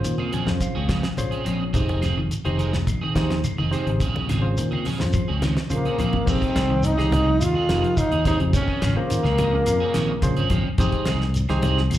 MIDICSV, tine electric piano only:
0, 0, Header, 1, 2, 480
1, 0, Start_track
1, 0, Key_signature, -4, "minor"
1, 0, Tempo, 565504
1, 1479, Time_signature, 4, 2, 24, 8
1, 10170, End_track
2, 0, Start_track
2, 0, Title_t, "Tine electric piano"
2, 0, Program_c, 0, 4
2, 0, Note_on_c, 0, 61, 84
2, 0, Note_on_c, 0, 65, 78
2, 0, Note_on_c, 0, 68, 79
2, 0, Note_on_c, 0, 72, 93
2, 120, Note_off_c, 0, 68, 0
2, 121, Note_off_c, 0, 65, 0
2, 122, Note_off_c, 0, 61, 0
2, 123, Note_off_c, 0, 72, 0
2, 287, Note_on_c, 0, 80, 65
2, 399, Note_on_c, 0, 61, 71
2, 400, Note_on_c, 0, 72, 77
2, 401, Note_on_c, 0, 68, 59
2, 402, Note_on_c, 0, 65, 62
2, 506, Note_off_c, 0, 80, 0
2, 521, Note_on_c, 0, 77, 68
2, 653, Note_off_c, 0, 61, 0
2, 654, Note_off_c, 0, 68, 0
2, 654, Note_off_c, 0, 72, 0
2, 655, Note_off_c, 0, 65, 0
2, 966, Note_off_c, 0, 77, 0
2, 1000, Note_on_c, 0, 73, 74
2, 1001, Note_on_c, 0, 61, 76
2, 1001, Note_on_c, 0, 68, 72
2, 1001, Note_on_c, 0, 72, 89
2, 1005, Note_on_c, 0, 65, 70
2, 1204, Note_off_c, 0, 61, 0
2, 1204, Note_off_c, 0, 68, 0
2, 1204, Note_off_c, 0, 72, 0
2, 1206, Note_off_c, 0, 65, 0
2, 1447, Note_off_c, 0, 73, 0
2, 1480, Note_on_c, 0, 63, 83
2, 1484, Note_on_c, 0, 72, 81
2, 1485, Note_on_c, 0, 67, 71
2, 1488, Note_on_c, 0, 68, 77
2, 1735, Note_off_c, 0, 63, 0
2, 1737, Note_off_c, 0, 72, 0
2, 1738, Note_off_c, 0, 67, 0
2, 1739, Note_off_c, 0, 68, 0
2, 2080, Note_on_c, 0, 63, 76
2, 2080, Note_on_c, 0, 68, 72
2, 2081, Note_on_c, 0, 67, 70
2, 2081, Note_on_c, 0, 72, 88
2, 2336, Note_off_c, 0, 68, 0
2, 2337, Note_off_c, 0, 63, 0
2, 2337, Note_off_c, 0, 67, 0
2, 2337, Note_off_c, 0, 72, 0
2, 2672, Note_on_c, 0, 63, 91
2, 2678, Note_on_c, 0, 68, 84
2, 2678, Note_on_c, 0, 72, 96
2, 2681, Note_on_c, 0, 67, 76
2, 2882, Note_off_c, 0, 63, 0
2, 2885, Note_off_c, 0, 68, 0
2, 2885, Note_off_c, 0, 72, 0
2, 2886, Note_off_c, 0, 67, 0
2, 3152, Note_on_c, 0, 63, 81
2, 3152, Note_on_c, 0, 68, 74
2, 3153, Note_on_c, 0, 67, 77
2, 3153, Note_on_c, 0, 72, 94
2, 3398, Note_off_c, 0, 63, 0
2, 3399, Note_off_c, 0, 67, 0
2, 3399, Note_off_c, 0, 68, 0
2, 3399, Note_off_c, 0, 72, 0
2, 3748, Note_on_c, 0, 61, 87
2, 3750, Note_on_c, 0, 72, 93
2, 3753, Note_on_c, 0, 65, 82
2, 3755, Note_on_c, 0, 68, 74
2, 3961, Note_off_c, 0, 61, 0
2, 3962, Note_off_c, 0, 72, 0
2, 3963, Note_off_c, 0, 65, 0
2, 3964, Note_off_c, 0, 68, 0
2, 4230, Note_on_c, 0, 65, 63
2, 4233, Note_on_c, 0, 61, 71
2, 4233, Note_on_c, 0, 68, 62
2, 4236, Note_on_c, 0, 72, 77
2, 4493, Note_off_c, 0, 65, 0
2, 4495, Note_off_c, 0, 61, 0
2, 4495, Note_off_c, 0, 68, 0
2, 4496, Note_off_c, 0, 72, 0
2, 4838, Note_on_c, 0, 61, 77
2, 4838, Note_on_c, 0, 65, 69
2, 4840, Note_on_c, 0, 72, 85
2, 4841, Note_on_c, 0, 68, 73
2, 5046, Note_off_c, 0, 61, 0
2, 5046, Note_off_c, 0, 65, 0
2, 5047, Note_off_c, 0, 72, 0
2, 5048, Note_off_c, 0, 68, 0
2, 5315, Note_on_c, 0, 72, 81
2, 5317, Note_on_c, 0, 67, 74
2, 5318, Note_on_c, 0, 68, 68
2, 5320, Note_on_c, 0, 63, 78
2, 5575, Note_off_c, 0, 72, 0
2, 5576, Note_off_c, 0, 67, 0
2, 5577, Note_off_c, 0, 68, 0
2, 5578, Note_off_c, 0, 63, 0
2, 5922, Note_on_c, 0, 63, 87
2, 5925, Note_on_c, 0, 67, 82
2, 5925, Note_on_c, 0, 68, 80
2, 5926, Note_on_c, 0, 75, 100
2, 6179, Note_off_c, 0, 63, 0
2, 6180, Note_off_c, 0, 68, 0
2, 6181, Note_off_c, 0, 67, 0
2, 6181, Note_off_c, 0, 75, 0
2, 6526, Note_on_c, 0, 67, 72
2, 6527, Note_on_c, 0, 63, 75
2, 6528, Note_on_c, 0, 68, 67
2, 6531, Note_on_c, 0, 70, 82
2, 6729, Note_off_c, 0, 67, 0
2, 6730, Note_off_c, 0, 63, 0
2, 6730, Note_off_c, 0, 68, 0
2, 6732, Note_off_c, 0, 70, 0
2, 7010, Note_on_c, 0, 63, 66
2, 7011, Note_on_c, 0, 68, 62
2, 7011, Note_on_c, 0, 72, 71
2, 7012, Note_on_c, 0, 67, 63
2, 7246, Note_off_c, 0, 63, 0
2, 7247, Note_off_c, 0, 67, 0
2, 7247, Note_off_c, 0, 68, 0
2, 7247, Note_off_c, 0, 72, 0
2, 7605, Note_on_c, 0, 65, 86
2, 7606, Note_on_c, 0, 68, 75
2, 7610, Note_on_c, 0, 72, 98
2, 7611, Note_on_c, 0, 61, 82
2, 7807, Note_off_c, 0, 65, 0
2, 7807, Note_off_c, 0, 68, 0
2, 7809, Note_off_c, 0, 72, 0
2, 7810, Note_off_c, 0, 61, 0
2, 8089, Note_on_c, 0, 61, 67
2, 8091, Note_on_c, 0, 65, 64
2, 8091, Note_on_c, 0, 68, 61
2, 8098, Note_on_c, 0, 70, 78
2, 8339, Note_off_c, 0, 61, 0
2, 8340, Note_off_c, 0, 65, 0
2, 8340, Note_off_c, 0, 68, 0
2, 8343, Note_off_c, 0, 70, 0
2, 8681, Note_on_c, 0, 65, 85
2, 8682, Note_on_c, 0, 68, 88
2, 8684, Note_on_c, 0, 61, 90
2, 8684, Note_on_c, 0, 72, 101
2, 8883, Note_off_c, 0, 65, 0
2, 8884, Note_off_c, 0, 61, 0
2, 8884, Note_off_c, 0, 68, 0
2, 8884, Note_off_c, 0, 72, 0
2, 9162, Note_on_c, 0, 63, 96
2, 9162, Note_on_c, 0, 72, 104
2, 9164, Note_on_c, 0, 67, 87
2, 9166, Note_on_c, 0, 68, 94
2, 9412, Note_off_c, 0, 63, 0
2, 9413, Note_off_c, 0, 72, 0
2, 9414, Note_off_c, 0, 67, 0
2, 9415, Note_off_c, 0, 68, 0
2, 9757, Note_on_c, 0, 67, 103
2, 9758, Note_on_c, 0, 63, 98
2, 9759, Note_on_c, 0, 72, 115
2, 9761, Note_on_c, 0, 68, 95
2, 10009, Note_off_c, 0, 67, 0
2, 10010, Note_off_c, 0, 63, 0
2, 10010, Note_off_c, 0, 72, 0
2, 10011, Note_off_c, 0, 68, 0
2, 10170, End_track
0, 0, End_of_file